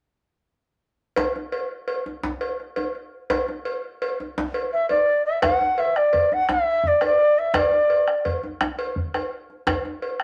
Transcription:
1.16 cowbell, djembe slap, djembe bass
1.36 djembe slap, djembe tone
1.52 cowbell
1.88 cowbell
2.06 djembe slap, djembe tone
2.23 djembe slap, djembe bass
2.41 cowbell
2.60 djembe slap
2.76 cowbell, djembe tone
2.95 djembe slap
3.30 cowbell, djembe slap, djembe bass
3.48 djembe slap, djembe tone
3.65 cowbell
4.02 cowbell
4.20 djembe slap, djembe tone
4.38 djembe slap, djembe bass
4.54 cowbell
4.73 E5, djembe slap
4.89 D5, cowbell, djembe tone
5.09 djembe slap
5.26 E5
5.42 F#5, bombo rim, bombo low, cowbell, djembe slap, djembe bass
5.61 bombo rim, djembe tone
5.78 E5, cowbell
5.96 D5, bombo rim, djembe slap
6.13 bombo low, cowbell
6.32 F#5, djembe tone
6.49 E5, bombo rim, djembe slap, djembe bass
6.83 D5, bombo low
7.01 bombo rim, cowbell, djembe tone
7.05 D5
7.36 E5, djembe slap
7.54 D5, bombo rim, bombo low, cowbell, djembe slap, djembe bass
7.72 bombo rim, djembe tone
7.90 cowbell
8.08 bombo rim, djembe slap
8.25 bombo low, cowbell
8.43 djembe tone
8.61 bombo rim, djembe slap, djembe bass
8.79 cowbell
8.96 bombo low
9.14 bombo rim, cowbell, djembe tone
9.50 djembe slap
9.67 bombo rim, bombo low, cowbell, djembe slap, djembe bass
9.85 bombo rim, djembe tone
10.02 cowbell
10.20 bombo rim

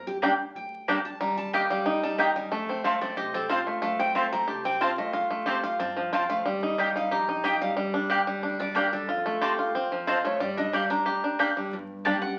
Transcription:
Already playing: G1
0.07 G4
0.22 G3 A#3 D4 G4 D5 G5
0.55 D2 G5
0.88 G3 A#3 D4 G4 D5 G5
1.05 A5
1.20 D#2 G3 A#5
1.37 A5
1.53 A#3 G4 D#5 G5
1.70 G3 F5
1.85 D2 D#4 G5
2.03 G3 A5
2.18 D#2 A#3 D#4 G4 D#5 G5 A#5
2.36 G3 G#5
2.51 F2 A3 A5
2.69 C4
2.84 A3 C4 F4 C5 F5 A5
3.01 C4 D5
3.17 C2 G4 D#5
3.34 C4 A4
3.49 C4 F4 C5 A5
3.67 A3
3.82 F2 A3 F5
3.99 C4 G5
4.15 A3 C4 F4 C5 A5
4.32 C4 A#5
4.48 C2 G4 A5
4.65 C4 G5
4.81 C4 F4 C5 F5 A5
4.98 A3 D#5
5.13 F2 F4 F5
5.30 A3
5.46 A2 C4 F4 G4 C5 A5
5.63 F4 F5
5.79 G2 C4 A5
5.97 F3
6.13 F2 C4 F4 C5 G5 A5
6.30 A3 F5
6.45 D#2 G3
6.63 D#4
6.78 G3 A#3 G4 D#5 G5
6.96 D#4 F5
7.11 A#1 G4 A#5
7.29 D#4
7.44 A#3 D#4 G4 D#5 G5
7.61 G3 F5
7.77 G2 G3
7.94 D4
8.10 A#3 G4 D5 G5
8.27 G3
8.43 D2 D4
8.60 G3 D5
8.75 A#3 D4 G4 A#4 D5 G5
8.93 G3 A4
9.09 F2 F4
9.26 A3
9.41 D2 C4 F4 G4 C5 A5
9.59 F4
9.75 D#2 C4
9.92 F3
10.07 F2 C4 F4 C5 D#5 A5
10.25 A3 C#5
10.40 G2 G3 D5
10.57 D4 D#5
10.73 G3 A#3 G4 D5 F5 G5
10.90 D4 A#5
11.06 D2 G4
11.24 D4
11.39 A#3 D4 G4 D5 G5
11.57 G3
11.73 G1 G2
12.05 G3 A#3 D4 G4 D5 G5 A5
12.22 D4 G4 F#5

